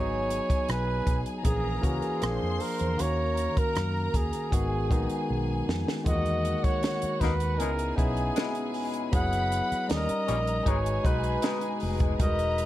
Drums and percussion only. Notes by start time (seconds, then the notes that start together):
0.30 closed hi-hat
0.50 kick, closed hi-hat
0.69 cross-stick, closed hi-hat
1.07 kick, closed hi-hat
1.26 closed hi-hat
1.45 kick, closed hi-hat
1.83 kick, closed hi-hat
2.02 closed hi-hat
2.22 cross-stick, closed hi-hat
2.60 open hi-hat
2.79 closed hi-hat
2.99 closed hi-hat
3.37 closed hi-hat
3.57 kick, closed hi-hat
3.75 cross-stick, closed hi-hat
4.14 kick, closed hi-hat
4.33 closed hi-hat
4.52 kick, closed hi-hat
4.91 kick, closed hi-hat
5.10 closed hi-hat
5.69 snare
5.88 snare
6.06 kick, closed hi-hat
6.26 closed hi-hat
6.45 closed hi-hat
6.64 kick, closed hi-hat
6.83 snare, closed hi-hat
7.02 closed hi-hat
7.21 kick, snare, closed hi-hat
7.40 closed hi-hat
7.60 closed hi-hat
7.79 closed hi-hat
7.98 kick, closed hi-hat
8.17 closed hi-hat
8.36 snare, closed hi-hat
8.55 closed hi-hat
8.74 open hi-hat
8.94 closed hi-hat
9.13 kick, closed hi-hat
9.33 closed hi-hat
9.52 closed hi-hat
9.72 closed hi-hat
9.90 snare, closed hi-hat
10.09 closed hi-hat
10.28 closed hi-hat
10.47 closed hi-hat
10.66 kick, closed hi-hat
10.86 closed hi-hat
11.05 kick, closed hi-hat
11.24 closed hi-hat
11.42 snare, closed hi-hat
11.61 closed hi-hat
11.80 open hi-hat
12.00 kick, closed hi-hat
12.20 kick, closed hi-hat
12.39 closed hi-hat
12.58 closed hi-hat